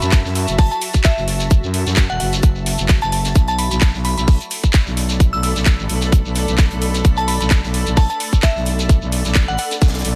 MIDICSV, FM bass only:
0, 0, Header, 1, 2, 480
1, 0, Start_track
1, 0, Tempo, 461538
1, 1569, Time_signature, 4, 2, 24, 8
1, 10560, End_track
2, 0, Start_track
2, 0, Title_t, "FM bass"
2, 0, Program_c, 0, 39
2, 22, Note_on_c, 0, 42, 98
2, 240, Note_off_c, 0, 42, 0
2, 262, Note_on_c, 0, 42, 100
2, 480, Note_off_c, 0, 42, 0
2, 501, Note_on_c, 0, 30, 95
2, 720, Note_off_c, 0, 30, 0
2, 1221, Note_on_c, 0, 30, 98
2, 1680, Note_off_c, 0, 30, 0
2, 1701, Note_on_c, 0, 42, 97
2, 1920, Note_off_c, 0, 42, 0
2, 1942, Note_on_c, 0, 42, 98
2, 2160, Note_off_c, 0, 42, 0
2, 2182, Note_on_c, 0, 28, 92
2, 2272, Note_off_c, 0, 28, 0
2, 2290, Note_on_c, 0, 30, 95
2, 2513, Note_off_c, 0, 30, 0
2, 2901, Note_on_c, 0, 30, 99
2, 3120, Note_off_c, 0, 30, 0
2, 3140, Note_on_c, 0, 30, 96
2, 3472, Note_off_c, 0, 30, 0
2, 3489, Note_on_c, 0, 35, 92
2, 3840, Note_off_c, 0, 35, 0
2, 3860, Note_on_c, 0, 35, 96
2, 4080, Note_off_c, 0, 35, 0
2, 4100, Note_on_c, 0, 35, 97
2, 4320, Note_off_c, 0, 35, 0
2, 4340, Note_on_c, 0, 35, 93
2, 4560, Note_off_c, 0, 35, 0
2, 5062, Note_on_c, 0, 35, 98
2, 5521, Note_off_c, 0, 35, 0
2, 5541, Note_on_c, 0, 35, 99
2, 5760, Note_off_c, 0, 35, 0
2, 5780, Note_on_c, 0, 35, 93
2, 6000, Note_off_c, 0, 35, 0
2, 6020, Note_on_c, 0, 33, 98
2, 6112, Note_off_c, 0, 33, 0
2, 6129, Note_on_c, 0, 35, 94
2, 6480, Note_off_c, 0, 35, 0
2, 6500, Note_on_c, 0, 35, 93
2, 6720, Note_off_c, 0, 35, 0
2, 6741, Note_on_c, 0, 35, 96
2, 6960, Note_off_c, 0, 35, 0
2, 6981, Note_on_c, 0, 35, 93
2, 7312, Note_off_c, 0, 35, 0
2, 7701, Note_on_c, 0, 35, 97
2, 7920, Note_off_c, 0, 35, 0
2, 7940, Note_on_c, 0, 35, 98
2, 8160, Note_off_c, 0, 35, 0
2, 8181, Note_on_c, 0, 35, 96
2, 8400, Note_off_c, 0, 35, 0
2, 8902, Note_on_c, 0, 35, 96
2, 9360, Note_off_c, 0, 35, 0
2, 9381, Note_on_c, 0, 35, 98
2, 9600, Note_off_c, 0, 35, 0
2, 9621, Note_on_c, 0, 35, 97
2, 9840, Note_off_c, 0, 35, 0
2, 9860, Note_on_c, 0, 33, 100
2, 9952, Note_off_c, 0, 33, 0
2, 10209, Note_on_c, 0, 35, 98
2, 10432, Note_off_c, 0, 35, 0
2, 10448, Note_on_c, 0, 35, 94
2, 10559, Note_off_c, 0, 35, 0
2, 10560, End_track
0, 0, End_of_file